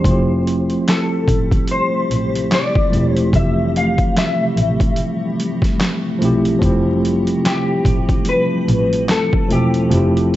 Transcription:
0.00 1.59 F3 medium
0.00 0.84 C5 medium
0.04 0.66 F1 loud
0.04 10.36 C3 medium
0.04 10.36 G3 medium
0.04 10.36 A3 medium
0.04 1.60 A3 medium
0.04 1.60 C4 medium
0.04 6.58 G4 loud
0.04 kick medium
0.04 closed hi-hat medium
0.09 1.61 E4 medium
0.09 1.62 G4 medium
0.47 closed hi-hat medium
0.70 closed hi-hat soft
0.88 1.71 A4 medium
0.88 snare loud
0.88 clap medium
0.88 closed hi-hat medium
1.28 1.66 A1 medium
1.28 kick medium
1.28 closed hi-hat medium
1.51 kick medium
1.51 closed hi-hat soft
1.67 2.53 C5 loud
1.67 closed hi-hat medium
2.10 2.48 A1 medium
2.10 closed hi-hat medium
2.35 closed hi-hat medium
2.52 3.14 D5 loud
2.52 snare loud
2.52 clap medium
2.52 closed hi-hat medium
2.75 kick loud
2.89 3.30 E1 medium
2.89 3.29 F3 medium
2.89 3.30 A3 medium
2.89 3.31 C4 medium
2.93 3.32 E4 medium
2.93 3.32 G4 medium
2.93 closed hi-hat medium
3.14 3.35 C5 loud
3.14 closed hi-hat soft
3.32 3.95 F1 loud
3.32 4.87 F3 medium
3.32 4.88 A3 medium
3.32 4.89 C4 medium
3.32 3.73 E5 loud
3.32 kick loud
3.32 closed hi-hat medium
3.37 4.90 E3 medium
3.37 4.91 G4 medium
3.76 4.18 F5 loud
3.76 closed hi-hat medium
3.98 kick loud
3.98 closed hi-hat soft
4.17 5.36 E5 loud
4.17 snare loud
4.17 clap medium
4.17 closed hi-hat medium
4.57 4.94 A1 medium
4.57 closed hi-hat medium
4.80 kick medium
4.80 closed hi-hat soft
4.96 closed hi-hat medium
5.40 closed hi-hat medium
5.62 kick medium
5.62 snare soft
5.62 closed hi-hat medium
5.81 snare loud
5.81 clap medium
5.81 closed hi-hat medium
6.19 6.44 B1 medium
6.19 6.58 F3 medium
6.19 6.59 A3 medium
6.19 6.60 C4 medium
6.19 closed hi-hat medium
6.24 6.61 E4 medium
6.24 6.62 G4 loud
6.45 closed hi-hat soft
6.59 7.24 F1 loud
6.59 8.15 F3 medium
6.59 10.36 F3 medium
6.59 8.16 A3 medium
6.59 8.17 C4 medium
6.59 kick loud
6.59 closed hi-hat medium
6.64 8.18 E4 medium
6.64 8.18 G4 medium
7.05 closed hi-hat medium
7.27 closed hi-hat soft
7.45 8.28 G4 medium
7.45 snare loud
7.45 clap medium
7.45 closed hi-hat loud
7.85 8.23 A1 medium
7.85 kick loud
7.85 closed hi-hat medium
8.09 kick medium
8.09 closed hi-hat soft
8.25 closed hi-hat medium
8.29 9.10 B4 loud
8.67 9.05 A1 medium
8.67 closed hi-hat medium
8.93 closed hi-hat medium
9.09 9.52 A4 medium
9.09 snare loud
9.09 clap medium
9.09 closed hi-hat medium
9.33 kick loud
9.48 9.88 E1 medium
9.48 9.88 F3 medium
9.48 9.88 A3 medium
9.48 9.89 C4 medium
9.48 closed hi-hat medium
9.53 9.90 E4 medium
9.53 10.29 G4 medium
9.53 9.91 A4 medium
9.74 closed hi-hat soft
9.89 10.36 F1 loud
9.89 10.36 F3 medium
9.89 10.36 A3 medium
9.89 10.36 C4 medium
9.89 closed hi-hat medium
9.94 10.36 E4 medium
9.94 10.36 G4 medium
10.17 closed hi-hat soft

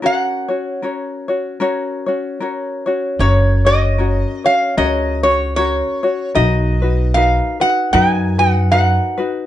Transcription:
0.02 0.49 C#4 medium
0.02 0.49 F#4 medium
0.02 0.49 A#4 medium
0.02 0.47 C#5 medium
0.02 2.38 F#5 medium
0.48 0.82 C#4 soft
0.48 0.83 F#4 soft
0.48 0.82 C#5 medium
0.82 1.29 C#4 medium
0.82 1.28 F#4 medium
0.82 1.28 A#4 soft
0.82 1.27 C#5 medium
1.28 1.59 C#4 soft
1.28 1.60 F#4 soft
1.28 1.60 C#5 medium
1.60 2.07 C#4 medium
1.60 2.07 F#4 medium
1.60 2.07 A#4 medium
1.60 2.05 C#5 medium
2.06 2.40 C#4 soft
2.06 2.40 F#4 medium
2.06 2.40 C#5 medium
2.40 2.87 C#4 medium
2.40 2.86 F#4 medium
2.40 2.86 A#4 medium
2.40 2.85 C#5 medium
2.86 3.19 C#4 soft
2.86 3.20 F#4 medium
2.86 3.19 C#5 medium
3.19 4.22 F#1 medium
3.19 3.66 C#4 medium
3.19 3.65 F#4 medium
3.19 3.66 A#4 medium
3.19 3.67 C#5 medium
3.19 3.64 C#5 medium
3.65 3.98 C#4 soft
3.65 3.99 F#4 soft
3.65 3.98 C#5 soft
3.65 4.45 D#5 medium
3.98 4.45 C#4 medium
3.98 4.44 F#4 medium
3.98 4.44 A#4 medium
3.98 4.43 C#5 medium
4.44 4.77 C#4 soft
4.44 4.77 F#4 soft
4.44 4.77 C#5 soft
4.44 4.77 F5 medium
4.77 5.80 C#2 medium
4.77 5.24 C#4 medium
4.77 5.23 F#4 medium
4.77 5.23 A#4 medium
4.77 5.22 C#5 medium
4.77 5.23 D#5 medium
5.23 5.56 C#4 soft
5.23 5.57 F#4 soft
5.23 5.56 C#5 medium
5.23 5.55 C#5 medium
5.56 6.03 C#4 medium
5.56 6.03 F#4 medium
5.56 6.02 A#4 medium
5.56 6.31 C#5 medium
5.56 6.02 C#5 medium
6.03 6.35 C#4 soft
6.03 6.34 F#4 soft
6.03 6.36 C#5 medium
6.35 7.39 B1 medium
6.35 6.81 D#4 medium
6.35 6.82 F#4 medium
6.35 6.81 A#4 medium
6.35 6.81 B4 medium
6.35 7.14 D#5 medium
6.82 7.14 D#4 soft
6.82 7.15 F#4 soft
6.82 7.15 B4 medium
7.14 7.61 D#4 medium
7.14 7.60 F#4 medium
7.14 7.61 A#4 medium
7.14 7.59 B4 medium
7.14 7.57 F5 loud
7.60 7.93 D#4 soft
7.60 7.93 F#4 soft
7.60 7.93 B4 soft
7.60 7.92 F#5 medium
7.93 8.96 F#2 loud
7.93 8.39 D#4 medium
7.93 8.38 F#4 medium
7.93 8.39 A#4 medium
7.93 8.37 B4 medium
7.93 8.11 G5 loud
8.11 8.39 G#5 loud
8.38 8.71 D#4 soft
8.38 8.72 F#4 soft
8.38 8.72 B4 soft
8.38 8.70 F#5 medium
8.71 9.19 D#4 medium
8.71 9.17 F#4 medium
8.71 9.18 A#4 medium
8.71 9.16 B4 medium
8.71 9.31 F#5 loud
9.18 9.46 D#4 soft
9.18 9.46 F#4 medium
9.18 9.46 B4 medium

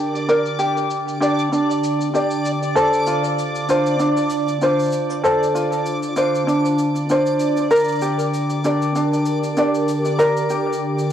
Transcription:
0.00 11.13 D3 medium
0.00 1.20 D4 medium
0.00 11.13 D4 medium
0.00 0.58 G4 medium
0.00 4.75 G4 medium
0.00 0.28 A#4 medium
0.00 2.75 A#4 medium
0.00 0.29 D5 medium
0.00 11.13 D5 medium
0.00 11.13 D6 medium
0.16 cabasa soft
0.29 1.21 A#4 medium
0.29 1.22 D5 medium
0.29 cabasa soft
0.46 cabasa soft
0.59 1.20 G4 medium
0.59 cabasa medium
0.77 cabasa soft
0.91 cabasa medium
1.08 cabasa soft
1.21 1.52 D4 medium
1.21 2.13 G4 medium
1.21 2.15 D5 medium
1.21 cabasa medium
1.39 cabasa soft
1.52 2.13 D4 medium
1.52 cabasa soft
1.71 cabasa soft
1.84 cabasa medium
2.01 cabasa soft
2.14 3.69 D4 soft
2.14 2.83 G4 medium
2.14 2.76 D5 medium
2.14 cabasa soft
2.31 cabasa soft
2.46 cabasa medium
2.63 cabasa soft
2.76 5.22 A4 medium
2.76 3.69 C5 medium
2.76 cabasa soft
2.94 cabasa soft
3.07 3.68 F4 medium
3.07 cabasa medium
3.24 cabasa soft
3.39 cabasa medium
3.51 9.50 C5 medium
3.56 cabasa soft
3.69 3.99 D4 medium
3.69 4.61 F4 medium
3.69 4.62 C5 medium
3.69 cabasa medium
3.86 cabasa soft
4.00 4.61 D4 medium
4.00 cabasa soft
4.17 9.27 F4 medium
4.17 cabasa soft
4.30 cabasa medium
4.48 cabasa soft
4.62 6.16 D4 medium
4.62 5.54 F4 medium
4.62 5.23 C5 medium
4.62 cabasa soft
4.79 cabasa soft
4.82 cabasa soft
4.84 cabasa soft
4.85 cabasa soft
4.88 cabasa soft
4.90 cabasa soft
4.92 cabasa soft
4.92 cabasa medium
5.10 cabasa soft
5.24 7.70 A4 medium
5.24 6.16 C5 medium
5.24 cabasa soft
5.43 cabasa soft
5.55 6.16 F4 medium
5.55 cabasa medium
5.72 cabasa soft
5.86 cabasa medium
6.03 cabasa soft
6.16 6.47 D4 medium
6.16 7.09 F4 soft
6.16 7.10 C5 medium
6.16 cabasa medium
6.35 cabasa soft
6.47 7.09 D4 medium
6.47 cabasa soft
6.65 cabasa soft
6.78 cabasa medium
6.95 cabasa soft
7.09 8.64 D4 medium
7.09 7.78 F4 soft
7.09 7.71 C5 medium
7.09 cabasa soft
7.26 cabasa soft
7.40 cabasa medium
7.57 cabasa soft
7.71 10.17 A#4 medium
7.71 8.65 D5 medium
7.71 cabasa soft
7.76 cabasa soft
7.80 cabasa soft
7.84 cabasa soft
7.88 cabasa soft
7.92 11.13 G4 medium
7.92 cabasa soft
7.95 cabasa soft
7.99 cabasa soft
8.02 8.64 G4 medium
8.02 cabasa medium
8.19 11.13 A#4 medium
8.19 cabasa soft
8.34 cabasa medium
8.50 cabasa soft
8.64 8.95 D4 medium
8.64 9.56 G4 medium
8.64 9.58 D5 medium
8.64 cabasa medium
8.82 cabasa soft
8.95 9.57 D4 medium
8.95 cabasa soft
9.13 cabasa soft
9.26 cabasa medium
9.44 cabasa soft
9.57 11.12 D4 medium
9.57 10.49 G4 soft
9.57 10.19 D5 medium
9.57 cabasa medium
9.75 cabasa soft
9.89 cabasa medium
10.05 cabasa soft
10.19 11.13 A#4 medium
10.19 11.13 D5 medium
10.19 cabasa medium
10.37 cabasa soft
10.50 11.12 G4 medium
10.50 cabasa medium
10.73 cabasa soft
10.99 cabasa soft

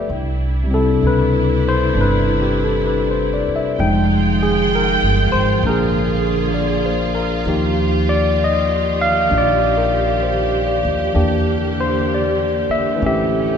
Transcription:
0.00 0.17 E5 soft
0.09 0.98 C2 medium
0.09 3.77 D4 medium
0.09 3.77 E4 medium
0.64 3.76 C3 soft
0.64 3.77 G3 soft
0.71 3.79 C4 soft
0.71 3.81 E4 medium
0.71 1.02 A4 medium
1.02 1.90 C#2 medium
1.07 1.63 B4 medium
1.69 1.96 C5 medium
1.95 3.44 G1 medium
1.95 3.80 D4 soft
2.01 2.85 B4 medium
2.42 2.70 G4 soft
2.64 2.96 A4 soft
2.87 3.29 B4 soft
3.11 3.49 C5 soft
3.34 3.62 D5 soft
3.48 muted upright bass stroke soft
3.56 3.88 E5 soft
3.79 4.98 F1 medium
3.79 5.62 D#3 medium
3.79 5.57 F3 medium
3.79 5.63 G#3 soft
3.79 5.62 G#3 medium
3.79 5.63 D#4 soft
3.79 11.14 F4 medium
3.79 5.64 G5 medium
3.79 5.62 G5 medium
4.43 4.71 G#4 medium
4.75 5.32 A#4 medium
5.02 5.30 G1 medium
5.32 5.61 G#1 medium
5.32 5.62 C5 medium
5.58 7.45 D3 medium
5.58 7.45 F3 soft
5.62 7.43 A#1 medium
5.62 7.46 A#3 soft
5.62 7.45 A#3 medium
5.62 7.48 D4 soft
5.62 7.45 G#4 medium
5.67 7.50 G#4 medium
5.67 6.53 A#4 medium
6.54 7.12 D5 soft
6.86 7.33 C5 soft
7.15 7.63 A#4 soft
7.45 9.27 D#2 medium
7.45 11.13 D#3 medium
7.45 11.16 F3 soft
7.45 11.14 A#3 soft
7.45 11.16 D#4 soft
7.45 13.57 G4 medium
7.45 11.15 G4 soft
8.09 8.39 D5 medium
8.44 9.01 D#5 medium
9.01 9.31 F5 medium
9.30 10.81 A#1 medium
9.30 11.13 D4 soft
9.30 11.17 F4 soft
9.38 10.23 D5 medium
9.77 10.43 A#4 soft
10.23 10.96 C5 soft
10.67 11.34 D5 soft
10.85 11.14 D#2 medium
11.13 12.65 E2 medium
11.13 13.57 D3 medium
11.13 12.95 E3 soft
11.13 13.01 A#3 soft
11.13 13.00 A#3 medium
11.13 13.00 D4 soft
11.13 13.01 G4 medium
11.81 12.09 C5 medium
12.14 12.71 D5 medium
12.69 13.01 E5 medium
12.69 muted upright bass stroke soft
12.96 13.57 E3 medium
12.96 13.57 A3 soft
13.02 13.57 A1 medium
13.02 13.57 A3 medium
13.02 13.57 C#4 soft
13.02 13.57 C#4 medium
13.06 13.57 G4 medium
13.06 13.57 E5 medium

